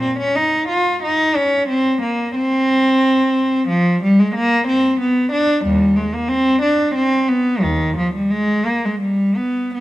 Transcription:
0.01 C4
0.19 C#4
0.35 D#4
0.68 F4
1.03 D#4
1.36 C#4
1.69 C4
2.01 A#3
2.35 C4
3.68 F3
4.03 G3
4.19 G#3
4.35 A#3
4.67 C4
5.00 B3
5.32 D4
5.64 D#2 G3
5.96 G#3
6.14 A#3
6.28 C4
6.62 D4
6.95 C4
7.28 B3
7.61 D#2 D#3
7.97 F3
8.14 G3
8.30 G#3
8.66 A#3
8.85 G#3
9.01 G3
9.37 B3
9.74 B3

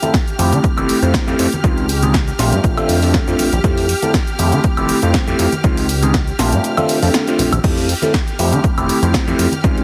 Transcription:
Already playing: G4 F6
0.02 A3 C4 E4 A4, closed hi-hat, high conga, shaker
0.14 kick, snare, closed hi-hat, shaker
0.27 closed hi-hat, shaker
0.39 F2 A3 C4 E4 G4, open hi-hat, high conga, shaker
0.52 D3, closed hi-hat, low conga, shaker
0.64 F1, kick, closed hi-hat, shaker
0.77 F1 A3 C4 E4 G4, closed hi-hat, high conga, high woodblock, shaker
0.89 open hi-hat, shaker
1.02 F2 A3 C4 E4 C5, closed hi-hat, low conga, shaker
1.14 kick, snare, closed hi-hat, high conga, shaker
1.27 F2 A3 C4 E4 G4, closed hi-hat, shaker
1.39 F2, open hi-hat, shaker
1.53 closed hi-hat, high conga, shaker
1.64 C#2 G#3 C4 D#4 F4, kick, closed hi-hat, shaker
1.77 closed hi-hat, shaker
1.89 open hi-hat, shaker
2.02 G#3 C4 D#4 G#4, closed hi-hat, high conga, shaker
2.14 kick, snare, closed hi-hat, shaker
2.28 closed hi-hat, shaker
2.39 A#1 A3 C4 D4 F4, snare, open hi-hat, shaker
2.52 G2, closed hi-hat, low conga, shaker
2.64 A#1, kick, closed hi-hat, shaker
2.77 A3 C4 D4 F4, closed hi-hat, high conga, high woodblock, shaker
2.89 F2, open hi-hat, shaker
3.01 A3 C4 D4 A4, open hi-hat, shaker
3.14 kick, snare, high conga, shaker
3.27 F2 A3 C4 D4 F4, closed hi-hat, shaker
3.39 A#1, open hi-hat, low conga, shaker
3.52 A#1, closed hi-hat, high conga, low conga, shaker
3.64 F2 A3 C4 E4 G4, kick, closed hi-hat, shaker
3.78 open hi-hat, shaker
3.89 open hi-hat, shaker
4.02 A3 C4 E4 A4, closed hi-hat, high conga, shaker
4.14 kick, snare, closed hi-hat, shaker
4.27 closed hi-hat, shaker
4.39 F2 A3 C4 E4 G4, open hi-hat, high conga, shaker
4.52 D3, closed hi-hat, low conga, shaker
4.64 F1, kick, closed hi-hat, shaker
4.77 F1 A3 C4 E4 G4, closed hi-hat, high conga, high woodblock, shaker
4.89 open hi-hat, shaker
5.02 F2 A3 C4 E4 C5, closed hi-hat, low conga, shaker
5.14 kick, snare, closed hi-hat, high conga, shaker
5.27 F2 A3 C4 E4 G4, closed hi-hat, shaker
5.39 F2, open hi-hat, shaker
5.52 closed hi-hat, high conga, shaker
5.64 C#2 G#3 C4 D#4 F4, kick, closed hi-hat, shaker
5.77 open hi-hat, shaker
5.89 open hi-hat, shaker
6.02 G#3 C4 D#4 G#4, closed hi-hat, high conga, shaker
6.14 kick, snare, closed hi-hat, shaker
6.27 closed hi-hat, shaker
6.39 A#1 A3 C4 D4 F4, snare, open hi-hat, shaker
6.52 G2, closed hi-hat, low conga, shaker
6.64 closed hi-hat, shaker
6.77 A3 C4 D4 F4, closed hi-hat, high conga, high woodblock, shaker
6.89 open hi-hat, shaker
7.02 F2 A3 C4 D4 A4, open hi-hat, shaker
7.14 snare, closed hi-hat, high conga, shaker
7.27 A3 C4 D4 F4, closed hi-hat, shaker
7.39 A#1, open hi-hat, low conga, shaker
7.51 A#1, closed hi-hat, high conga, low conga, high woodblock, shaker
7.63 F2 A3 C4 E4 G4 F6, kick, closed hi-hat, crash, shaker
7.77 open hi-hat, shaker
7.89 open hi-hat, shaker
8.02 A3 C4 E4 A4, closed hi-hat, high conga, shaker
8.14 kick, snare, closed hi-hat, shaker
8.27 closed hi-hat, shaker
8.39 F2 A3 C4 E4 G4, open hi-hat, shaker
8.52 D3, closed hi-hat, low conga, shaker
8.64 F1, kick, closed hi-hat, shaker
8.77 F1 A3 C4 E4 G4, closed hi-hat, high conga, high woodblock, shaker
8.89 open hi-hat, shaker
9.02 F2 A3 C4 E4 C5, closed hi-hat, low conga, shaker
9.14 kick, snare, closed hi-hat, high conga, shaker
9.27 F2 A3 C4 E4 G4, closed hi-hat, shaker
9.39 F2, open hi-hat, shaker
9.52 closed hi-hat, high conga, shaker
9.64 C#2 G#3 C4 D#4 F4, kick, closed hi-hat, shaker
9.77 closed hi-hat, shaker

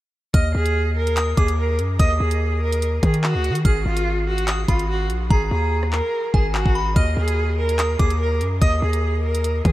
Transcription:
0.34 D#2 D#5 F6, kick, closed hi-hat
0.55 D#2 G#4
0.66 closed hi-hat
0.96 A#4
1.07 closed hi-hat
1.17 D#6, clap, closed hi-hat
1.37 D#2 G#4 D6, kick, closed hi-hat
1.48 closed hi-hat
1.58 A#4
1.79 F#2, closed hi-hat
1.99 D#2 D#5 D#6, kick, closed hi-hat
2.20 D#2 G#4
2.31 closed hi-hat
2.61 A#4
2.72 closed hi-hat
2.82 closed hi-hat
3.03 D#3 G#4, kick, closed hi-hat
3.14 closed hi-hat
3.24 F#4, clap
3.35 D2
3.44 closed hi-hat
3.50 D#3
3.55 closed hi-hat
3.65 G#1 G#4 F6, kick, closed hi-hat
3.86 G#1 F4
3.97 closed hi-hat
4.27 F#4
4.38 closed hi-hat
4.48 D#6, clap, closed hi-hat
4.68 G#1 F4 B5, kick, closed hi-hat
4.79 closed hi-hat
4.89 F#4
5.10 A#1, closed hi-hat
5.30 G#1 G#4 A#5, kick
5.51 D#2 G#4
5.83 cross-stick
5.92 A#4, clap
6.34 G#1 G#4 G#5, kick
6.54 F#4, clap
6.66 G#1, kick
6.75 B5
6.96 D#2 D#5 F6, kick, closed hi-hat
7.17 D#2 G#4
7.28 closed hi-hat
7.58 A#4
7.69 closed hi-hat
7.79 D#6, clap, closed hi-hat
7.99 D#2 G#4 D6, kick, closed hi-hat
8.10 closed hi-hat
8.20 A#4
8.41 F#2, closed hi-hat
8.62 D#2 D#5 D#6, kick, closed hi-hat
8.82 D#2 G#4
8.93 closed hi-hat
9.23 A#4
9.35 closed hi-hat
9.44 closed hi-hat
9.65 D#3 G#4, kick, closed hi-hat

